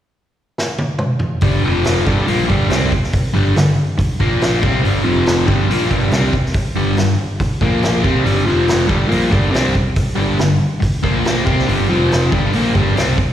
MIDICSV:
0, 0, Header, 1, 6, 480
1, 0, Start_track
1, 0, Tempo, 427046
1, 1602, Time_signature, 4, 2, 24, 8
1, 14981, End_track
2, 0, Start_track
2, 0, Title_t, "Overdriven electric guitar"
2, 0, Program_c, 0, 29
2, 1596, Note_on_c, 0, 43, 85
2, 1603, Note_on_c, 0, 50, 100
2, 1610, Note_on_c, 0, 55, 100
2, 1831, Note_off_c, 0, 43, 0
2, 1835, Note_off_c, 0, 50, 0
2, 1838, Note_off_c, 0, 55, 0
2, 1852, Note_on_c, 0, 41, 84
2, 1856, Note_on_c, 0, 53, 104
2, 1858, Note_on_c, 0, 48, 86
2, 2317, Note_off_c, 0, 41, 0
2, 2320, Note_off_c, 0, 53, 0
2, 2321, Note_off_c, 0, 48, 0
2, 2322, Note_on_c, 0, 43, 89
2, 2327, Note_on_c, 0, 50, 83
2, 2327, Note_on_c, 0, 55, 94
2, 2548, Note_off_c, 0, 50, 0
2, 2552, Note_on_c, 0, 46, 94
2, 2553, Note_off_c, 0, 43, 0
2, 2555, Note_off_c, 0, 55, 0
2, 2559, Note_on_c, 0, 53, 96
2, 2570, Note_on_c, 0, 58, 98
2, 2787, Note_off_c, 0, 46, 0
2, 2790, Note_on_c, 0, 43, 98
2, 2791, Note_on_c, 0, 50, 105
2, 2792, Note_off_c, 0, 53, 0
2, 2797, Note_off_c, 0, 58, 0
2, 2799, Note_on_c, 0, 55, 107
2, 3018, Note_off_c, 0, 55, 0
2, 3022, Note_off_c, 0, 50, 0
2, 3026, Note_on_c, 0, 48, 97
2, 3027, Note_off_c, 0, 43, 0
2, 3031, Note_on_c, 0, 55, 87
2, 3048, Note_on_c, 0, 60, 96
2, 3265, Note_off_c, 0, 48, 0
2, 3267, Note_off_c, 0, 55, 0
2, 3275, Note_off_c, 0, 60, 0
2, 3749, Note_on_c, 0, 43, 88
2, 3764, Note_on_c, 0, 50, 83
2, 3768, Note_on_c, 0, 55, 97
2, 3982, Note_off_c, 0, 43, 0
2, 3993, Note_off_c, 0, 50, 0
2, 3995, Note_off_c, 0, 55, 0
2, 3995, Note_on_c, 0, 43, 55
2, 4005, Note_on_c, 0, 50, 66
2, 4188, Note_off_c, 0, 43, 0
2, 4192, Note_off_c, 0, 50, 0
2, 4720, Note_on_c, 0, 46, 105
2, 4726, Note_on_c, 0, 53, 97
2, 4732, Note_on_c, 0, 58, 102
2, 5190, Note_off_c, 0, 46, 0
2, 5194, Note_off_c, 0, 53, 0
2, 5196, Note_off_c, 0, 58, 0
2, 5197, Note_on_c, 0, 48, 77
2, 5203, Note_on_c, 0, 55, 101
2, 5214, Note_on_c, 0, 60, 113
2, 5424, Note_off_c, 0, 55, 0
2, 5429, Note_off_c, 0, 48, 0
2, 5429, Note_on_c, 0, 43, 84
2, 5436, Note_on_c, 0, 50, 99
2, 5437, Note_off_c, 0, 60, 0
2, 5437, Note_on_c, 0, 55, 90
2, 5654, Note_off_c, 0, 43, 0
2, 5659, Note_on_c, 0, 41, 82
2, 5661, Note_off_c, 0, 55, 0
2, 5665, Note_on_c, 0, 53, 96
2, 5666, Note_off_c, 0, 50, 0
2, 5670, Note_on_c, 0, 48, 91
2, 6136, Note_off_c, 0, 41, 0
2, 6140, Note_on_c, 0, 43, 83
2, 6142, Note_off_c, 0, 48, 0
2, 6143, Note_off_c, 0, 53, 0
2, 6147, Note_on_c, 0, 50, 95
2, 6153, Note_on_c, 0, 55, 88
2, 6381, Note_off_c, 0, 43, 0
2, 6384, Note_off_c, 0, 50, 0
2, 6387, Note_off_c, 0, 55, 0
2, 6405, Note_on_c, 0, 46, 89
2, 6408, Note_on_c, 0, 53, 96
2, 6413, Note_on_c, 0, 58, 91
2, 6633, Note_off_c, 0, 46, 0
2, 6635, Note_off_c, 0, 53, 0
2, 6637, Note_off_c, 0, 58, 0
2, 6639, Note_on_c, 0, 43, 96
2, 6644, Note_on_c, 0, 50, 107
2, 6645, Note_on_c, 0, 55, 99
2, 6870, Note_off_c, 0, 43, 0
2, 6871, Note_off_c, 0, 55, 0
2, 6873, Note_off_c, 0, 50, 0
2, 6884, Note_on_c, 0, 48, 81
2, 6884, Note_on_c, 0, 55, 104
2, 6897, Note_on_c, 0, 60, 92
2, 7113, Note_off_c, 0, 48, 0
2, 7113, Note_off_c, 0, 55, 0
2, 7119, Note_off_c, 0, 60, 0
2, 7595, Note_on_c, 0, 43, 85
2, 7596, Note_on_c, 0, 55, 105
2, 7602, Note_on_c, 0, 50, 96
2, 7825, Note_off_c, 0, 43, 0
2, 7828, Note_off_c, 0, 50, 0
2, 7829, Note_off_c, 0, 55, 0
2, 7839, Note_on_c, 0, 43, 54
2, 7842, Note_on_c, 0, 50, 61
2, 8030, Note_off_c, 0, 43, 0
2, 8031, Note_off_c, 0, 50, 0
2, 8556, Note_on_c, 0, 46, 86
2, 8562, Note_on_c, 0, 53, 92
2, 8572, Note_on_c, 0, 58, 101
2, 9022, Note_off_c, 0, 46, 0
2, 9027, Note_on_c, 0, 48, 80
2, 9028, Note_off_c, 0, 53, 0
2, 9032, Note_on_c, 0, 55, 87
2, 9035, Note_off_c, 0, 58, 0
2, 9039, Note_on_c, 0, 60, 93
2, 9257, Note_on_c, 0, 43, 87
2, 9259, Note_off_c, 0, 55, 0
2, 9266, Note_off_c, 0, 48, 0
2, 9271, Note_on_c, 0, 50, 93
2, 9272, Note_off_c, 0, 60, 0
2, 9273, Note_on_c, 0, 55, 109
2, 9499, Note_off_c, 0, 43, 0
2, 9503, Note_on_c, 0, 41, 85
2, 9508, Note_off_c, 0, 50, 0
2, 9508, Note_off_c, 0, 55, 0
2, 9513, Note_on_c, 0, 53, 102
2, 9518, Note_on_c, 0, 48, 89
2, 9967, Note_off_c, 0, 41, 0
2, 9971, Note_on_c, 0, 43, 87
2, 9976, Note_off_c, 0, 48, 0
2, 9977, Note_off_c, 0, 53, 0
2, 9980, Note_on_c, 0, 50, 81
2, 9982, Note_on_c, 0, 55, 86
2, 10202, Note_off_c, 0, 50, 0
2, 10207, Note_on_c, 0, 46, 86
2, 10211, Note_off_c, 0, 55, 0
2, 10216, Note_on_c, 0, 53, 93
2, 10218, Note_on_c, 0, 58, 107
2, 10219, Note_off_c, 0, 43, 0
2, 10453, Note_on_c, 0, 43, 86
2, 10457, Note_off_c, 0, 46, 0
2, 10461, Note_off_c, 0, 53, 0
2, 10462, Note_off_c, 0, 58, 0
2, 10466, Note_on_c, 0, 50, 91
2, 10469, Note_on_c, 0, 55, 99
2, 10676, Note_off_c, 0, 55, 0
2, 10682, Note_off_c, 0, 50, 0
2, 10687, Note_on_c, 0, 48, 75
2, 10689, Note_on_c, 0, 55, 85
2, 10699, Note_on_c, 0, 60, 92
2, 10700, Note_off_c, 0, 43, 0
2, 10937, Note_off_c, 0, 48, 0
2, 10938, Note_off_c, 0, 55, 0
2, 10943, Note_off_c, 0, 60, 0
2, 11416, Note_on_c, 0, 43, 96
2, 11419, Note_on_c, 0, 50, 85
2, 11426, Note_on_c, 0, 55, 98
2, 11662, Note_off_c, 0, 43, 0
2, 11664, Note_off_c, 0, 50, 0
2, 11667, Note_off_c, 0, 55, 0
2, 11676, Note_on_c, 0, 43, 58
2, 11683, Note_on_c, 0, 50, 59
2, 11872, Note_off_c, 0, 43, 0
2, 11875, Note_off_c, 0, 50, 0
2, 12395, Note_on_c, 0, 46, 94
2, 12403, Note_on_c, 0, 53, 107
2, 12405, Note_on_c, 0, 58, 112
2, 12865, Note_off_c, 0, 46, 0
2, 12869, Note_on_c, 0, 48, 83
2, 12876, Note_off_c, 0, 53, 0
2, 12878, Note_off_c, 0, 58, 0
2, 12880, Note_on_c, 0, 55, 83
2, 12882, Note_on_c, 0, 60, 93
2, 13110, Note_off_c, 0, 48, 0
2, 13112, Note_off_c, 0, 55, 0
2, 13115, Note_on_c, 0, 43, 91
2, 13117, Note_off_c, 0, 60, 0
2, 13118, Note_on_c, 0, 50, 90
2, 13125, Note_on_c, 0, 55, 103
2, 13354, Note_off_c, 0, 43, 0
2, 13355, Note_off_c, 0, 50, 0
2, 13359, Note_off_c, 0, 55, 0
2, 13360, Note_on_c, 0, 41, 82
2, 13367, Note_on_c, 0, 48, 97
2, 13370, Note_on_c, 0, 53, 93
2, 13837, Note_off_c, 0, 41, 0
2, 13841, Note_off_c, 0, 48, 0
2, 13842, Note_off_c, 0, 53, 0
2, 13848, Note_on_c, 0, 43, 91
2, 13857, Note_on_c, 0, 50, 86
2, 13860, Note_on_c, 0, 55, 93
2, 14081, Note_off_c, 0, 43, 0
2, 14086, Note_off_c, 0, 50, 0
2, 14087, Note_off_c, 0, 55, 0
2, 14107, Note_on_c, 0, 46, 81
2, 14112, Note_on_c, 0, 53, 87
2, 14113, Note_on_c, 0, 58, 96
2, 14318, Note_off_c, 0, 46, 0
2, 14318, Note_on_c, 0, 43, 98
2, 14323, Note_on_c, 0, 50, 96
2, 14326, Note_off_c, 0, 53, 0
2, 14330, Note_on_c, 0, 55, 101
2, 14334, Note_off_c, 0, 58, 0
2, 14550, Note_off_c, 0, 50, 0
2, 14551, Note_off_c, 0, 55, 0
2, 14555, Note_on_c, 0, 48, 87
2, 14557, Note_off_c, 0, 43, 0
2, 14565, Note_on_c, 0, 55, 88
2, 14570, Note_on_c, 0, 60, 94
2, 14795, Note_off_c, 0, 48, 0
2, 14800, Note_off_c, 0, 55, 0
2, 14803, Note_off_c, 0, 60, 0
2, 14981, End_track
3, 0, Start_track
3, 0, Title_t, "Picked electric bass"
3, 0, Program_c, 1, 34
3, 1597, Note_on_c, 1, 31, 91
3, 1816, Note_off_c, 1, 31, 0
3, 1823, Note_on_c, 1, 29, 93
3, 2277, Note_off_c, 1, 29, 0
3, 2326, Note_on_c, 1, 31, 76
3, 2546, Note_off_c, 1, 31, 0
3, 2556, Note_on_c, 1, 34, 89
3, 2780, Note_off_c, 1, 34, 0
3, 2818, Note_on_c, 1, 31, 88
3, 3027, Note_off_c, 1, 31, 0
3, 3034, Note_on_c, 1, 36, 98
3, 3259, Note_off_c, 1, 36, 0
3, 3761, Note_on_c, 1, 31, 88
3, 3982, Note_off_c, 1, 31, 0
3, 3992, Note_on_c, 1, 31, 67
3, 4217, Note_off_c, 1, 31, 0
3, 4725, Note_on_c, 1, 34, 90
3, 5167, Note_off_c, 1, 34, 0
3, 5205, Note_on_c, 1, 36, 86
3, 5424, Note_off_c, 1, 36, 0
3, 5449, Note_on_c, 1, 31, 91
3, 5666, Note_off_c, 1, 31, 0
3, 5695, Note_on_c, 1, 29, 86
3, 6132, Note_off_c, 1, 29, 0
3, 6167, Note_on_c, 1, 31, 92
3, 6375, Note_off_c, 1, 31, 0
3, 6381, Note_on_c, 1, 34, 83
3, 6611, Note_off_c, 1, 34, 0
3, 6643, Note_on_c, 1, 31, 86
3, 6863, Note_off_c, 1, 31, 0
3, 6870, Note_on_c, 1, 36, 91
3, 7096, Note_off_c, 1, 36, 0
3, 7597, Note_on_c, 1, 31, 84
3, 7820, Note_off_c, 1, 31, 0
3, 7838, Note_on_c, 1, 31, 68
3, 8061, Note_off_c, 1, 31, 0
3, 8557, Note_on_c, 1, 34, 79
3, 9004, Note_off_c, 1, 34, 0
3, 9044, Note_on_c, 1, 36, 83
3, 9264, Note_off_c, 1, 36, 0
3, 9274, Note_on_c, 1, 31, 88
3, 9500, Note_off_c, 1, 31, 0
3, 9524, Note_on_c, 1, 29, 81
3, 9969, Note_off_c, 1, 29, 0
3, 10000, Note_on_c, 1, 31, 77
3, 10223, Note_off_c, 1, 31, 0
3, 10243, Note_on_c, 1, 34, 88
3, 10465, Note_off_c, 1, 34, 0
3, 10482, Note_on_c, 1, 31, 92
3, 10705, Note_off_c, 1, 31, 0
3, 10736, Note_on_c, 1, 36, 88
3, 10952, Note_off_c, 1, 36, 0
3, 11447, Note_on_c, 1, 31, 99
3, 11669, Note_off_c, 1, 31, 0
3, 11684, Note_on_c, 1, 31, 67
3, 11907, Note_off_c, 1, 31, 0
3, 12412, Note_on_c, 1, 34, 94
3, 12856, Note_off_c, 1, 34, 0
3, 12897, Note_on_c, 1, 36, 94
3, 13115, Note_off_c, 1, 36, 0
3, 13127, Note_on_c, 1, 31, 94
3, 13350, Note_off_c, 1, 31, 0
3, 13380, Note_on_c, 1, 29, 91
3, 13821, Note_off_c, 1, 29, 0
3, 13851, Note_on_c, 1, 31, 85
3, 14073, Note_off_c, 1, 31, 0
3, 14093, Note_on_c, 1, 34, 92
3, 14315, Note_off_c, 1, 34, 0
3, 14331, Note_on_c, 1, 31, 95
3, 14554, Note_off_c, 1, 31, 0
3, 14599, Note_on_c, 1, 36, 88
3, 14809, Note_off_c, 1, 36, 0
3, 14981, End_track
4, 0, Start_track
4, 0, Title_t, "Muted overdriven electric guitar strokes"
4, 4469, Note_on_c, 9, 29, 58
4, 4582, Note_off_c, 9, 29, 0
4, 8325, Note_on_c, 9, 29, 53
4, 8437, Note_off_c, 9, 29, 0
4, 12141, Note_on_c, 9, 29, 52
4, 12253, Note_off_c, 9, 29, 0
4, 14981, End_track
5, 0, Start_track
5, 0, Title_t, "Muted picked electric bass strokes"
5, 4484, Note_on_c, 9, 29, 42
5, 4596, Note_off_c, 9, 29, 0
5, 8321, Note_on_c, 9, 29, 37
5, 8433, Note_off_c, 9, 29, 0
5, 12175, Note_on_c, 9, 29, 40
5, 12287, Note_off_c, 9, 29, 0
5, 14981, End_track
6, 0, Start_track
6, 0, Title_t, "Drums"
6, 655, Note_on_c, 9, 38, 67
6, 767, Note_off_c, 9, 38, 0
6, 880, Note_on_c, 9, 48, 67
6, 993, Note_off_c, 9, 48, 0
6, 1107, Note_on_c, 9, 47, 79
6, 1220, Note_off_c, 9, 47, 0
6, 1342, Note_on_c, 9, 43, 87
6, 1454, Note_off_c, 9, 43, 0
6, 1583, Note_on_c, 9, 46, 53
6, 1597, Note_on_c, 9, 36, 105
6, 1695, Note_off_c, 9, 46, 0
6, 1710, Note_off_c, 9, 36, 0
6, 2072, Note_on_c, 9, 46, 59
6, 2085, Note_on_c, 9, 38, 108
6, 2185, Note_off_c, 9, 46, 0
6, 2197, Note_off_c, 9, 38, 0
6, 2322, Note_on_c, 9, 36, 96
6, 2435, Note_off_c, 9, 36, 0
6, 2560, Note_on_c, 9, 46, 56
6, 2672, Note_off_c, 9, 46, 0
6, 2807, Note_on_c, 9, 36, 75
6, 2919, Note_off_c, 9, 36, 0
6, 3037, Note_on_c, 9, 46, 53
6, 3050, Note_on_c, 9, 38, 97
6, 3150, Note_off_c, 9, 46, 0
6, 3162, Note_off_c, 9, 38, 0
6, 3283, Note_on_c, 9, 36, 76
6, 3395, Note_off_c, 9, 36, 0
6, 3412, Note_on_c, 9, 38, 29
6, 3515, Note_on_c, 9, 46, 57
6, 3524, Note_off_c, 9, 38, 0
6, 3524, Note_on_c, 9, 36, 107
6, 3628, Note_off_c, 9, 46, 0
6, 3636, Note_off_c, 9, 36, 0
6, 4003, Note_on_c, 9, 46, 50
6, 4015, Note_on_c, 9, 38, 112
6, 4115, Note_off_c, 9, 46, 0
6, 4127, Note_off_c, 9, 38, 0
6, 4479, Note_on_c, 9, 46, 52
6, 4483, Note_on_c, 9, 36, 81
6, 4592, Note_off_c, 9, 46, 0
6, 4595, Note_off_c, 9, 36, 0
6, 4723, Note_on_c, 9, 36, 73
6, 4835, Note_off_c, 9, 36, 0
6, 4959, Note_on_c, 9, 46, 50
6, 4971, Note_on_c, 9, 38, 105
6, 5071, Note_off_c, 9, 46, 0
6, 5084, Note_off_c, 9, 38, 0
6, 5204, Note_on_c, 9, 36, 99
6, 5316, Note_off_c, 9, 36, 0
6, 5449, Note_on_c, 9, 46, 51
6, 5562, Note_off_c, 9, 46, 0
6, 5913, Note_on_c, 9, 46, 53
6, 5926, Note_on_c, 9, 38, 109
6, 6026, Note_off_c, 9, 46, 0
6, 6038, Note_off_c, 9, 38, 0
6, 6161, Note_on_c, 9, 36, 101
6, 6273, Note_off_c, 9, 36, 0
6, 6413, Note_on_c, 9, 46, 56
6, 6526, Note_off_c, 9, 46, 0
6, 6641, Note_on_c, 9, 36, 67
6, 6753, Note_off_c, 9, 36, 0
6, 6871, Note_on_c, 9, 46, 50
6, 6883, Note_on_c, 9, 38, 109
6, 6984, Note_off_c, 9, 46, 0
6, 6996, Note_off_c, 9, 38, 0
6, 7119, Note_on_c, 9, 36, 73
6, 7232, Note_off_c, 9, 36, 0
6, 7258, Note_on_c, 9, 38, 33
6, 7346, Note_on_c, 9, 46, 58
6, 7356, Note_on_c, 9, 36, 114
6, 7371, Note_off_c, 9, 38, 0
6, 7458, Note_off_c, 9, 46, 0
6, 7469, Note_off_c, 9, 36, 0
6, 7833, Note_on_c, 9, 46, 56
6, 7846, Note_on_c, 9, 38, 103
6, 7946, Note_off_c, 9, 46, 0
6, 7958, Note_off_c, 9, 38, 0
6, 8317, Note_on_c, 9, 36, 86
6, 8322, Note_on_c, 9, 46, 47
6, 8430, Note_off_c, 9, 36, 0
6, 8434, Note_off_c, 9, 46, 0
6, 8554, Note_on_c, 9, 36, 74
6, 8666, Note_off_c, 9, 36, 0
6, 8796, Note_on_c, 9, 46, 45
6, 8808, Note_on_c, 9, 38, 103
6, 8908, Note_off_c, 9, 46, 0
6, 8921, Note_off_c, 9, 38, 0
6, 9042, Note_on_c, 9, 36, 98
6, 9154, Note_off_c, 9, 36, 0
6, 9285, Note_on_c, 9, 46, 56
6, 9397, Note_off_c, 9, 46, 0
6, 9756, Note_on_c, 9, 46, 53
6, 9768, Note_on_c, 9, 38, 111
6, 9868, Note_off_c, 9, 46, 0
6, 9880, Note_off_c, 9, 38, 0
6, 9997, Note_on_c, 9, 36, 100
6, 10109, Note_off_c, 9, 36, 0
6, 10245, Note_on_c, 9, 46, 53
6, 10358, Note_off_c, 9, 46, 0
6, 10482, Note_on_c, 9, 36, 79
6, 10594, Note_off_c, 9, 36, 0
6, 10723, Note_on_c, 9, 46, 51
6, 10736, Note_on_c, 9, 38, 97
6, 10836, Note_off_c, 9, 46, 0
6, 10848, Note_off_c, 9, 38, 0
6, 10962, Note_on_c, 9, 36, 79
6, 11074, Note_off_c, 9, 36, 0
6, 11194, Note_on_c, 9, 46, 62
6, 11200, Note_on_c, 9, 36, 104
6, 11306, Note_off_c, 9, 46, 0
6, 11312, Note_off_c, 9, 36, 0
6, 11674, Note_on_c, 9, 46, 55
6, 11686, Note_on_c, 9, 38, 100
6, 11786, Note_off_c, 9, 46, 0
6, 11798, Note_off_c, 9, 38, 0
6, 12165, Note_on_c, 9, 36, 76
6, 12166, Note_on_c, 9, 46, 51
6, 12277, Note_off_c, 9, 36, 0
6, 12278, Note_off_c, 9, 46, 0
6, 12405, Note_on_c, 9, 36, 82
6, 12518, Note_off_c, 9, 36, 0
6, 12645, Note_on_c, 9, 46, 48
6, 12657, Note_on_c, 9, 38, 101
6, 12758, Note_off_c, 9, 46, 0
6, 12770, Note_off_c, 9, 38, 0
6, 12891, Note_on_c, 9, 36, 106
6, 13003, Note_off_c, 9, 36, 0
6, 13025, Note_on_c, 9, 38, 34
6, 13135, Note_on_c, 9, 46, 53
6, 13137, Note_off_c, 9, 38, 0
6, 13247, Note_off_c, 9, 46, 0
6, 13616, Note_on_c, 9, 46, 48
6, 13628, Note_on_c, 9, 38, 97
6, 13728, Note_off_c, 9, 46, 0
6, 13741, Note_off_c, 9, 38, 0
6, 13850, Note_on_c, 9, 36, 94
6, 13963, Note_off_c, 9, 36, 0
6, 14085, Note_on_c, 9, 46, 52
6, 14197, Note_off_c, 9, 46, 0
6, 14333, Note_on_c, 9, 36, 74
6, 14445, Note_off_c, 9, 36, 0
6, 14578, Note_on_c, 9, 46, 54
6, 14591, Note_on_c, 9, 38, 100
6, 14691, Note_off_c, 9, 46, 0
6, 14703, Note_off_c, 9, 38, 0
6, 14813, Note_on_c, 9, 36, 81
6, 14926, Note_off_c, 9, 36, 0
6, 14981, End_track
0, 0, End_of_file